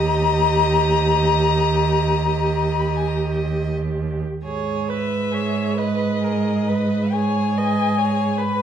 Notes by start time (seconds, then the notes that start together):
Already playing: D#2 G4 D#5 A#5
2.79 B5
2.87 A#5
2.96 G#5
3.07 A#5
4.44 G#2 G#4 C#5
4.88 B4 E5
5.32 G#4 C#5
5.73 B4 D#5
5.78 B4
6.21 G#4 A#4
6.68 B4
7.12 G#4 C#5 G#5
7.57 B4 D#5
7.98 G#4 C#5
8.38 B4 B5